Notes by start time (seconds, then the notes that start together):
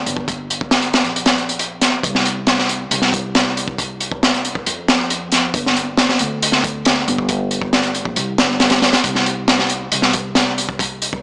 0.06 G1, closed hi-hat
0.17 kick
0.28 kick, closed hi-hat
0.50 closed hi-hat
0.61 kick
0.71 snare, closed hi-hat
0.82 closed hi-hat
0.94 snare, closed hi-hat
1.04 A#1, closed hi-hat
1.16 closed hi-hat
1.26 snare, closed hi-hat
1.38 closed hi-hat
1.49 closed hi-hat
1.59 closed hi-hat
1.81 snare, closed hi-hat
2.03 C2, kick, closed hi-hat
2.15 snare
2.25 closed hi-hat
2.47 snare, closed hi-hat
2.59 snare
2.69 closed hi-hat
2.91 C2, closed hi-hat
3.02 snare
3.13 kick, closed hi-hat
3.35 snare, closed hi-hat
3.57 closed hi-hat
3.68 kick
3.78 kick, closed hi-hat
4.00 closed hi-hat
4.12 kick
4.23 snare, closed hi-hat
4.34 closed hi-hat
4.45 closed hi-hat
4.55 kick
4.66 F2, closed hi-hat
4.88 snare, closed hi-hat
5.10 closed hi-hat
5.32 snare, closed hi-hat
5.54 G1, kick, closed hi-hat
5.66 snare
5.76 closed hi-hat
5.97 snare, closed hi-hat
6.09 snare
6.19 D2, closed hi-hat
6.42 closed hi-hat
6.52 snare
6.64 kick, closed hi-hat
6.85 snare, closed hi-hat
7.08 G1, closed hi-hat
7.18 kick
7.29 kick, closed hi-hat
7.51 closed hi-hat
7.62 kick
7.73 snare, closed hi-hat
7.83 closed hi-hat
7.95 closed hi-hat
8.05 A#1, kick
8.16 C2, closed hi-hat
8.38 G1, snare, closed hi-hat
8.60 snare, closed hi-hat
8.70 snare, closed hi-hat
8.82 snare, closed hi-hat
8.93 snare, closed hi-hat
9.04 C2, kick, closed hi-hat
9.15 snare
9.26 closed hi-hat
9.48 snare, closed hi-hat
9.59 snare
9.70 closed hi-hat
9.92 C2, closed hi-hat
10.02 snare
10.13 kick, closed hi-hat
10.35 snare, closed hi-hat
10.58 closed hi-hat
10.69 kick
10.79 kick, closed hi-hat
11.02 closed hi-hat
11.13 kick